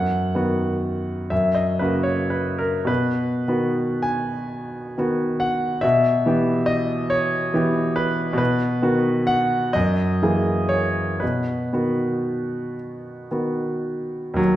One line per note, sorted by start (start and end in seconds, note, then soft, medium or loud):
0.00 0.33 F#2 soft
0.00 1.31 F#5 medium
0.35 1.28 D#3 soft
0.35 1.28 B3 soft
0.35 1.28 F#4 soft
1.30 1.79 F#2 soft
1.30 1.55 E5 soft
1.55 1.80 D#5 soft
1.79 2.84 C#3 soft
1.79 2.85 A#3 soft
1.79 2.85 F#4 soft
1.79 2.05 B4 soft
2.03 2.31 C#5 soft
2.30 2.58 B4 soft
2.58 2.88 A#4 soft
2.85 3.44 B2 soft
2.85 4.03 B4 medium
3.48 4.95 D#3 soft
3.48 4.95 B3 soft
3.48 4.95 F#4 soft
4.02 5.41 G#5 medium
4.98 5.79 D#3 soft
4.98 5.80 B3 soft
4.98 5.80 F#4 soft
5.40 5.83 F#5 medium
5.81 6.24 B2 soft
5.81 6.67 E5 medium
6.26 7.52 E3 soft
6.26 7.52 B3 soft
6.26 7.52 G4 soft
6.66 7.11 D#5 medium
7.10 7.97 C#5 medium
7.54 8.35 E3 soft
7.54 8.35 B3 soft
7.54 8.36 G4 soft
7.96 8.36 B4 medium
8.33 8.78 B2 soft
8.38 9.27 B4 medium
8.82 9.70 D#3 soft
8.82 9.70 B3 soft
8.82 9.70 F#4 soft
9.27 9.74 F#5 medium
9.73 10.21 F#2 medium
9.73 10.70 D#5 medium
10.22 11.18 E3 soft
10.22 11.18 A#3 soft
10.22 11.18 G#4 soft
10.69 11.21 C#5 medium
11.20 11.71 B2 soft
11.20 12.76 B4 soft
11.73 13.27 D#3 soft
11.73 13.27 B3 soft
11.73 13.28 F#4 soft
13.31 14.34 D#3 soft
13.31 14.34 B3 soft
13.31 14.34 F#4 soft
14.34 14.56 D#2 soft
14.34 14.56 F#3 medium